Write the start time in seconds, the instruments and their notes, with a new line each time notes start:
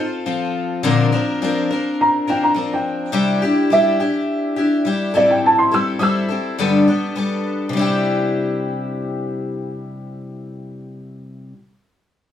Already playing: twelve-string acoustic guitar A4
0.00 twelve-string acoustic guitar C4 F4
0.26 twelve-string acoustic guitar F3 C4 F4 A4
0.83 twelve-string acoustic guitar A#2 D3 F3 C4 D4 A#4
1.12 twelve-string acoustic guitar F3 C4 D4 A#4
1.42 twelve-string acoustic guitar F3 C4 D4 A#4
1.71 twelve-string acoustic guitar F3 C4 D4 A#4
2.01 upright piano A#5
2.27 twelve-string acoustic guitar F3 C4 D4 A#4, upright piano G5
2.43 upright piano A#5
2.54 twelve-string acoustic guitar F3 C4 D4 A#4
2.74 upright piano G5
3.12 twelve-string acoustic guitar C3 G3 D4 E4 G4
3.42 twelve-string acoustic guitar D4 E4 G4
3.70 twelve-string acoustic guitar G3 D4 E4 G4, upright piano E5
4.00 twelve-string acoustic guitar D4 E4 G4
4.56 twelve-string acoustic guitar D4 E4 G4
4.85 twelve-string acoustic guitar G3 D4 E4 G4
5.14 twelve-string acoustic guitar A2 E3 G3 C4 E4 A4, upright piano D5
5.31 upright piano G5
5.46 upright piano A5
5.58 upright piano C6
5.72 twelve-string acoustic guitar G3 C4 E4 A4, upright piano E6
5.99 twelve-string acoustic guitar G3 C4 E4 A4, upright piano D#6 E6
6.29 twelve-string acoustic guitar G3 C4 E4 A4
6.58 twelve-string acoustic guitar G2 D3 G3 B3 D4 A4
6.88 twelve-string acoustic guitar G3 B3 D4 A4
7.16 twelve-string acoustic guitar G3 B3 D4 A4
7.69 twelve-string acoustic guitar C3
7.73 twelve-string acoustic guitar G3 D4
7.79 twelve-string acoustic guitar E4 G4